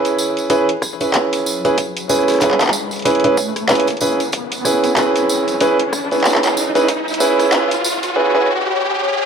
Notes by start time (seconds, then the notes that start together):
Already playing: C#4 E4 G#4 B4, riser
0.05 closed hi-hat, tambourine
0.18 tambourine
0.37 closed hi-hat, tambourine
0.50 C#4 E4 G#4 B4, closed hi-hat, tambourine
0.69 closed hi-hat
0.82 kick, cross-stick, tambourine
1.01 C#4 E4 G#4 B4, closed hi-hat, tambourine
1.14 clap, closed hi-hat, tambourine
1.33 closed hi-hat, tambourine
1.46 tambourine
1.65 C#4 E4 G#4 B4, closed hi-hat, tambourine
1.78 kick, closed hi-hat, tambourine
1.97 closed hi-hat, tambourine
2.09 C#4 E4 G#4 B4, cross-stick, tambourine
2.14 cross-stick
2.19 cross-stick
2.23 cross-stick
2.28 cross-stick, closed hi-hat, tambourine
2.30 cross-stick, closed hi-hat
2.32 cross-stick, closed hi-hat
2.36 closed hi-hat
2.38 cross-stick, closed hi-hat
2.40 C#4 E4 G#4 B4, clap, closed hi-hat, tambourine
2.42 closed hi-hat
2.51 clap
2.60 clap, closed hi-hat, tambourine
2.67 clap
2.73 tambourine
2.91 closed hi-hat, tambourine
2.96 closed hi-hat
2.99 closed hi-hat
3.02 C#4 E4 G#4 B4, closed hi-hat, tambourine
3.06 closed hi-hat
3.15 closed hi-hat
3.20 closed hi-hat
3.24 C#4 E4 G#4 B4, closed hi-hat
3.37 kick, tambourine
3.56 cross-stick, closed hi-hat, tambourine
3.69 C#4 E4 G#4 B4, clap, closed hi-hat, tambourine
3.75 closed hi-hat
3.80 closed hi-hat
3.87 kick, closed hi-hat, tambourine
3.90 closed hi-hat
3.97 closed hi-hat, tambourine
4.01 C#4 E4 G#4 B4
4.20 closed hi-hat, tambourine
4.32 kick, closed hi-hat, tambourine
4.52 closed hi-hat, tambourine
4.65 C#4 E4 G#4 B4, cross-stick, tambourine
4.84 closed hi-hat, tambourine
4.97 C#4 E4 G#4 B4, clap, closed hi-hat, tambourine
5.16 closed hi-hat, tambourine
5.29 tambourine
5.48 closed hi-hat, tambourine
5.60 C#4 E4 G#4 B4, closed hi-hat, tambourine
5.79 closed hi-hat
5.93 kick, cross-stick, tambourine
6.11 C#4 E4 G#4 B4, closed hi-hat, tambourine
6.20 closed hi-hat
6.24 clap, tambourine
6.31 closed hi-hat
6.35 clap
6.43 clap, closed hi-hat, tambourine
6.57 tambourine
6.75 C#4 E4 G#4 B4, closed hi-hat, tambourine
6.88 kick, closed hi-hat, tambourine
7.08 tambourine
7.14 closed hi-hat
7.20 C#4 E4 G#4 B4, tambourine
7.39 cross-stick, closed hi-hat, tambourine
7.52 C#4 E4 G#4 B4, clap, closed hi-hat, tambourine
7.71 closed hi-hat, tambourine
7.84 tambourine
8.03 closed hi-hat, tambourine
8.16 C#4 E4 G#4 B4, swell
8.35 C#4 E4 G#4 B4